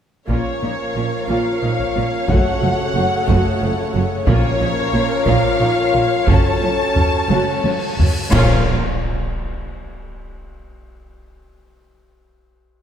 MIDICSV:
0, 0, Header, 1, 14, 480
1, 0, Start_track
1, 0, Key_signature, -5, "minor"
1, 0, Tempo, 665188
1, 208, Time_signature, 6, 3, 24, 8
1, 4046, Tempo, 681818
1, 5966, Tempo, 669643
1, 9184, End_track
2, 0, Start_track
2, 0, Title_t, "Violin section"
2, 0, Program_c, 0, 48
2, 213, Note_on_c, 0, 73, 55
2, 906, Note_off_c, 0, 73, 0
2, 940, Note_on_c, 0, 77, 56
2, 1658, Note_off_c, 0, 77, 0
2, 1660, Note_on_c, 0, 78, 71
2, 2850, Note_off_c, 0, 78, 0
2, 3092, Note_on_c, 0, 73, 75
2, 3778, Note_off_c, 0, 73, 0
2, 3805, Note_on_c, 0, 77, 72
2, 4511, Note_off_c, 0, 77, 0
2, 4527, Note_on_c, 0, 81, 75
2, 5726, Note_off_c, 0, 81, 0
2, 5967, Note_on_c, 0, 65, 81
2, 6233, Note_off_c, 0, 65, 0
2, 9184, End_track
3, 0, Start_track
3, 0, Title_t, "Violin section"
3, 0, Program_c, 1, 48
3, 199, Note_on_c, 1, 73, 51
3, 3052, Note_off_c, 1, 73, 0
3, 3081, Note_on_c, 1, 73, 74
3, 5791, Note_off_c, 1, 73, 0
3, 5962, Note_on_c, 1, 73, 80
3, 6231, Note_off_c, 1, 73, 0
3, 9184, End_track
4, 0, Start_track
4, 0, Title_t, "String section"
4, 0, Program_c, 2, 48
4, 204, Note_on_c, 2, 70, 56
4, 205, Note_on_c, 2, 77, 59
4, 206, Note_on_c, 2, 73, 53
4, 207, Note_on_c, 2, 61, 57
4, 1624, Note_off_c, 2, 70, 0
4, 1624, Note_off_c, 2, 77, 0
4, 1653, Note_on_c, 2, 78, 75
4, 1654, Note_on_c, 2, 69, 66
4, 3085, Note_off_c, 2, 69, 0
4, 3085, Note_off_c, 2, 78, 0
4, 3085, Note_on_c, 2, 70, 88
4, 3086, Note_on_c, 2, 77, 82
4, 4495, Note_off_c, 2, 73, 0
4, 4496, Note_off_c, 2, 61, 0
4, 4522, Note_on_c, 2, 73, 67
4, 4525, Note_off_c, 2, 70, 0
4, 4525, Note_off_c, 2, 77, 0
4, 4526, Note_on_c, 2, 54, 68
4, 4526, Note_on_c, 2, 61, 70
4, 4528, Note_on_c, 2, 81, 67
4, 5935, Note_off_c, 2, 73, 0
4, 5936, Note_off_c, 2, 61, 0
4, 5956, Note_on_c, 2, 77, 91
4, 5957, Note_on_c, 2, 61, 89
4, 5958, Note_on_c, 2, 70, 93
4, 5959, Note_on_c, 2, 73, 103
4, 5965, Note_off_c, 2, 54, 0
4, 5966, Note_off_c, 2, 81, 0
4, 6227, Note_off_c, 2, 77, 0
4, 6228, Note_off_c, 2, 61, 0
4, 6228, Note_off_c, 2, 70, 0
4, 6229, Note_off_c, 2, 73, 0
4, 9184, End_track
5, 0, Start_track
5, 0, Title_t, "French horn section"
5, 0, Program_c, 3, 60
5, 198, Note_on_c, 3, 61, 56
5, 899, Note_off_c, 3, 61, 0
5, 924, Note_on_c, 3, 65, 65
5, 1650, Note_off_c, 3, 65, 0
5, 1651, Note_on_c, 3, 66, 72
5, 2822, Note_off_c, 3, 66, 0
5, 3080, Note_on_c, 3, 61, 82
5, 3772, Note_off_c, 3, 61, 0
5, 3795, Note_on_c, 3, 65, 99
5, 4521, Note_off_c, 3, 65, 0
5, 4525, Note_on_c, 3, 69, 84
5, 5701, Note_off_c, 3, 69, 0
5, 5963, Note_on_c, 3, 70, 87
5, 6174, Note_off_c, 3, 70, 0
5, 9184, End_track
6, 0, Start_track
6, 0, Title_t, "Viola section"
6, 0, Program_c, 4, 48
6, 203, Note_on_c, 4, 58, 47
6, 204, Note_on_c, 4, 65, 55
6, 430, Note_off_c, 4, 58, 0
6, 431, Note_off_c, 4, 65, 0
6, 446, Note_on_c, 4, 58, 39
6, 446, Note_on_c, 4, 63, 37
6, 504, Note_off_c, 4, 58, 0
6, 504, Note_off_c, 4, 63, 0
6, 692, Note_on_c, 4, 58, 36
6, 692, Note_on_c, 4, 65, 42
6, 749, Note_off_c, 4, 65, 0
6, 750, Note_off_c, 4, 58, 0
6, 923, Note_on_c, 4, 58, 49
6, 923, Note_on_c, 4, 65, 44
6, 1151, Note_off_c, 4, 65, 0
6, 1152, Note_off_c, 4, 58, 0
6, 1169, Note_on_c, 4, 63, 39
6, 1171, Note_on_c, 4, 58, 43
6, 1227, Note_off_c, 4, 63, 0
6, 1229, Note_off_c, 4, 58, 0
6, 1411, Note_on_c, 4, 65, 46
6, 1412, Note_on_c, 4, 58, 47
6, 1469, Note_off_c, 4, 65, 0
6, 1470, Note_off_c, 4, 58, 0
6, 1650, Note_on_c, 4, 66, 58
6, 1653, Note_on_c, 4, 57, 59
6, 1875, Note_off_c, 4, 66, 0
6, 1876, Note_off_c, 4, 57, 0
6, 1895, Note_on_c, 4, 53, 45
6, 1895, Note_on_c, 4, 57, 45
6, 1953, Note_off_c, 4, 53, 0
6, 1953, Note_off_c, 4, 57, 0
6, 2134, Note_on_c, 4, 57, 52
6, 2134, Note_on_c, 4, 66, 53
6, 2192, Note_off_c, 4, 57, 0
6, 2192, Note_off_c, 4, 66, 0
6, 2370, Note_on_c, 4, 57, 61
6, 2372, Note_on_c, 4, 66, 74
6, 2592, Note_off_c, 4, 57, 0
6, 2594, Note_off_c, 4, 66, 0
6, 2610, Note_on_c, 4, 53, 47
6, 2613, Note_on_c, 4, 57, 54
6, 2667, Note_off_c, 4, 53, 0
6, 2671, Note_off_c, 4, 57, 0
6, 2847, Note_on_c, 4, 57, 51
6, 2849, Note_on_c, 4, 66, 61
6, 2905, Note_off_c, 4, 57, 0
6, 2906, Note_off_c, 4, 66, 0
6, 3087, Note_on_c, 4, 65, 81
6, 3088, Note_on_c, 4, 58, 77
6, 3307, Note_off_c, 4, 65, 0
6, 3308, Note_off_c, 4, 58, 0
6, 3321, Note_on_c, 4, 58, 54
6, 3323, Note_on_c, 4, 63, 60
6, 3379, Note_off_c, 4, 58, 0
6, 3381, Note_off_c, 4, 63, 0
6, 3558, Note_on_c, 4, 58, 57
6, 3560, Note_on_c, 4, 65, 62
6, 3616, Note_off_c, 4, 58, 0
6, 3618, Note_off_c, 4, 65, 0
6, 3799, Note_on_c, 4, 65, 68
6, 3800, Note_on_c, 4, 58, 61
6, 4027, Note_off_c, 4, 58, 0
6, 4027, Note_off_c, 4, 65, 0
6, 4038, Note_on_c, 4, 63, 50
6, 4040, Note_on_c, 4, 58, 49
6, 4094, Note_off_c, 4, 63, 0
6, 4096, Note_off_c, 4, 58, 0
6, 4273, Note_on_c, 4, 58, 50
6, 4275, Note_on_c, 4, 65, 55
6, 4330, Note_off_c, 4, 58, 0
6, 4332, Note_off_c, 4, 65, 0
6, 4513, Note_on_c, 4, 61, 69
6, 4514, Note_on_c, 4, 66, 68
6, 4742, Note_off_c, 4, 61, 0
6, 4742, Note_off_c, 4, 66, 0
6, 4756, Note_on_c, 4, 61, 47
6, 4756, Note_on_c, 4, 65, 43
6, 4812, Note_off_c, 4, 61, 0
6, 4812, Note_off_c, 4, 65, 0
6, 4992, Note_on_c, 4, 61, 46
6, 4993, Note_on_c, 4, 66, 42
6, 5048, Note_off_c, 4, 61, 0
6, 5049, Note_off_c, 4, 66, 0
6, 5237, Note_on_c, 4, 66, 58
6, 5238, Note_on_c, 4, 61, 48
6, 5463, Note_off_c, 4, 66, 0
6, 5464, Note_off_c, 4, 61, 0
6, 5477, Note_on_c, 4, 65, 45
6, 5478, Note_on_c, 4, 61, 40
6, 5534, Note_off_c, 4, 61, 0
6, 5534, Note_off_c, 4, 65, 0
6, 5718, Note_on_c, 4, 61, 43
6, 5718, Note_on_c, 4, 66, 51
6, 5774, Note_off_c, 4, 61, 0
6, 5775, Note_off_c, 4, 66, 0
6, 5959, Note_on_c, 4, 61, 77
6, 5959, Note_on_c, 4, 65, 80
6, 6229, Note_off_c, 4, 61, 0
6, 6229, Note_off_c, 4, 65, 0
6, 9184, End_track
7, 0, Start_track
7, 0, Title_t, "Trombone section"
7, 0, Program_c, 5, 61
7, 205, Note_on_c, 5, 53, 44
7, 207, Note_on_c, 5, 58, 42
7, 1624, Note_off_c, 5, 53, 0
7, 1625, Note_off_c, 5, 58, 0
7, 1654, Note_on_c, 5, 49, 58
7, 1658, Note_on_c, 5, 57, 48
7, 3057, Note_off_c, 5, 49, 0
7, 3087, Note_off_c, 5, 57, 0
7, 3090, Note_on_c, 5, 58, 62
7, 3091, Note_on_c, 5, 53, 69
7, 4499, Note_off_c, 5, 53, 0
7, 4499, Note_off_c, 5, 58, 0
7, 4524, Note_on_c, 5, 54, 54
7, 4528, Note_on_c, 5, 61, 55
7, 5712, Note_off_c, 5, 61, 0
7, 5735, Note_off_c, 5, 54, 0
7, 5959, Note_on_c, 5, 53, 82
7, 5959, Note_on_c, 5, 61, 76
7, 6172, Note_off_c, 5, 53, 0
7, 6172, Note_off_c, 5, 61, 0
7, 9184, End_track
8, 0, Start_track
8, 0, Title_t, "Cello section"
8, 0, Program_c, 6, 48
8, 207, Note_on_c, 6, 46, 49
8, 264, Note_off_c, 6, 46, 0
8, 449, Note_on_c, 6, 46, 33
8, 507, Note_off_c, 6, 46, 0
8, 693, Note_on_c, 6, 46, 37
8, 751, Note_off_c, 6, 46, 0
8, 934, Note_on_c, 6, 46, 58
8, 992, Note_off_c, 6, 46, 0
8, 1178, Note_on_c, 6, 46, 31
8, 1236, Note_off_c, 6, 46, 0
8, 1415, Note_on_c, 6, 46, 44
8, 1473, Note_off_c, 6, 46, 0
8, 1658, Note_on_c, 6, 42, 64
8, 1715, Note_off_c, 6, 42, 0
8, 1897, Note_on_c, 6, 42, 42
8, 1954, Note_off_c, 6, 42, 0
8, 2133, Note_on_c, 6, 42, 49
8, 2191, Note_off_c, 6, 42, 0
8, 2373, Note_on_c, 6, 42, 69
8, 2431, Note_off_c, 6, 42, 0
8, 2606, Note_on_c, 6, 42, 51
8, 2663, Note_off_c, 6, 42, 0
8, 2850, Note_on_c, 6, 42, 53
8, 2907, Note_off_c, 6, 42, 0
8, 3087, Note_on_c, 6, 46, 81
8, 3145, Note_off_c, 6, 46, 0
8, 3323, Note_on_c, 6, 46, 54
8, 3381, Note_off_c, 6, 46, 0
8, 3559, Note_on_c, 6, 46, 63
8, 3616, Note_off_c, 6, 46, 0
8, 3796, Note_on_c, 6, 46, 81
8, 3854, Note_off_c, 6, 46, 0
8, 4041, Note_on_c, 6, 46, 42
8, 4098, Note_off_c, 6, 46, 0
8, 4279, Note_on_c, 6, 46, 47
8, 4335, Note_off_c, 6, 46, 0
8, 4519, Note_on_c, 6, 42, 65
8, 4576, Note_off_c, 6, 42, 0
8, 4764, Note_on_c, 6, 42, 46
8, 4820, Note_off_c, 6, 42, 0
8, 4998, Note_on_c, 6, 42, 49
8, 5055, Note_off_c, 6, 42, 0
8, 5236, Note_on_c, 6, 42, 63
8, 5292, Note_off_c, 6, 42, 0
8, 5479, Note_on_c, 6, 42, 39
8, 5535, Note_off_c, 6, 42, 0
8, 5720, Note_on_c, 6, 42, 43
8, 5776, Note_off_c, 6, 42, 0
8, 5958, Note_on_c, 6, 46, 82
8, 6228, Note_off_c, 6, 46, 0
8, 9184, End_track
9, 0, Start_track
9, 0, Title_t, "Timpani"
9, 0, Program_c, 7, 47
9, 3085, Note_on_c, 7, 46, 76
9, 3774, Note_off_c, 7, 46, 0
9, 5958, Note_on_c, 7, 46, 97
9, 6184, Note_off_c, 7, 46, 0
9, 9184, End_track
10, 0, Start_track
10, 0, Title_t, "Double bass section"
10, 0, Program_c, 8, 48
10, 205, Note_on_c, 8, 34, 45
10, 263, Note_off_c, 8, 34, 0
10, 448, Note_on_c, 8, 34, 40
10, 505, Note_off_c, 8, 34, 0
10, 688, Note_on_c, 8, 34, 41
10, 746, Note_off_c, 8, 34, 0
10, 930, Note_on_c, 8, 34, 59
10, 988, Note_off_c, 8, 34, 0
10, 1176, Note_on_c, 8, 34, 40
10, 1234, Note_off_c, 8, 34, 0
10, 1413, Note_on_c, 8, 34, 35
10, 1471, Note_off_c, 8, 34, 0
10, 1652, Note_on_c, 8, 30, 64
10, 1710, Note_off_c, 8, 30, 0
10, 1892, Note_on_c, 8, 30, 53
10, 1950, Note_off_c, 8, 30, 0
10, 2131, Note_on_c, 8, 30, 52
10, 2189, Note_off_c, 8, 30, 0
10, 2370, Note_on_c, 8, 30, 80
10, 2428, Note_off_c, 8, 30, 0
10, 2611, Note_on_c, 8, 30, 54
10, 2669, Note_off_c, 8, 30, 0
10, 2849, Note_on_c, 8, 30, 51
10, 2906, Note_off_c, 8, 30, 0
10, 3085, Note_on_c, 8, 34, 71
10, 3143, Note_off_c, 8, 34, 0
10, 3321, Note_on_c, 8, 34, 63
10, 3379, Note_off_c, 8, 34, 0
10, 3560, Note_on_c, 8, 34, 56
10, 3618, Note_off_c, 8, 34, 0
10, 3798, Note_on_c, 8, 34, 86
10, 3856, Note_off_c, 8, 34, 0
10, 4038, Note_on_c, 8, 34, 51
10, 4094, Note_off_c, 8, 34, 0
10, 4281, Note_on_c, 8, 34, 44
10, 4337, Note_off_c, 8, 34, 0
10, 4519, Note_on_c, 8, 30, 67
10, 4575, Note_off_c, 8, 30, 0
10, 4763, Note_on_c, 8, 30, 44
10, 4819, Note_off_c, 8, 30, 0
10, 5001, Note_on_c, 8, 30, 48
10, 5057, Note_off_c, 8, 30, 0
10, 5239, Note_on_c, 8, 30, 71
10, 5295, Note_off_c, 8, 30, 0
10, 5479, Note_on_c, 8, 30, 42
10, 5536, Note_off_c, 8, 30, 0
10, 5722, Note_on_c, 8, 30, 40
10, 5778, Note_off_c, 8, 30, 0
10, 5960, Note_on_c, 8, 34, 89
10, 6230, Note_off_c, 8, 34, 0
10, 9184, End_track
11, 0, Start_track
11, 0, Title_t, "Cymbal swell"
11, 0, Program_c, 10, 119
11, 4522, Note_on_c, 10, 60, 61
11, 5963, Note_off_c, 10, 60, 0
11, 9184, End_track
12, 0, Start_track
12, 0, Title_t, "Impact"
12, 0, Program_c, 11, 103
12, 5961, Note_on_c, 11, 60, 78
12, 7402, Note_off_c, 11, 60, 0
12, 9184, End_track
13, 0, Start_track
13, 0, Title_t, "Taiko and cinematic ensemble drums"
13, 202, Note_on_c, 9, 41, 57
13, 275, Note_off_c, 9, 41, 0
13, 1289, Note_on_c, 9, 41, 34
13, 1361, Note_off_c, 9, 41, 0
13, 1648, Note_on_c, 9, 41, 97
13, 1720, Note_off_c, 9, 41, 0
13, 2367, Note_on_c, 9, 41, 82
13, 2439, Note_off_c, 9, 41, 0
13, 3083, Note_on_c, 9, 41, 100
13, 3155, Note_off_c, 9, 41, 0
13, 3795, Note_on_c, 9, 41, 90
13, 3868, Note_off_c, 9, 41, 0
13, 4520, Note_on_c, 9, 41, 108
13, 4591, Note_off_c, 9, 41, 0
13, 4997, Note_on_c, 9, 43, 59
13, 5067, Note_off_c, 9, 43, 0
13, 5238, Note_on_c, 9, 48, 82
13, 5309, Note_off_c, 9, 48, 0
13, 5477, Note_on_c, 9, 48, 77
13, 5548, Note_off_c, 9, 48, 0
13, 5725, Note_on_c, 9, 43, 78
13, 5795, Note_off_c, 9, 43, 0
13, 5960, Note_on_c, 9, 41, 108
13, 6031, Note_off_c, 9, 41, 0
13, 9184, End_track
14, 0, Start_track
14, 0, Title_t, "Drums"
14, 5956, Note_on_c, 9, 35, 74
14, 5956, Note_on_c, 9, 49, 64
14, 6027, Note_off_c, 9, 35, 0
14, 6027, Note_off_c, 9, 49, 0
14, 9184, End_track
0, 0, End_of_file